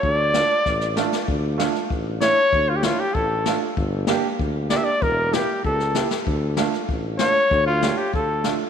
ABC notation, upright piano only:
X:1
M:2/4
L:1/16
Q:1/4=96
K:Dm
V:1 name="Upright piano"
z2 [A,DF] z3 [A,DF] z | z2 [A,DF] z3 [A,DE] z | z2 [A,DE] z3 [A,DF] z | z2 [B,DG] z3 [B,DG] z |
z2 [B,EG] z3 [B,EG] z | z2 [A,DF] z3 [A,DF] z | z2 [A,DG] z3 [A,DF] z |]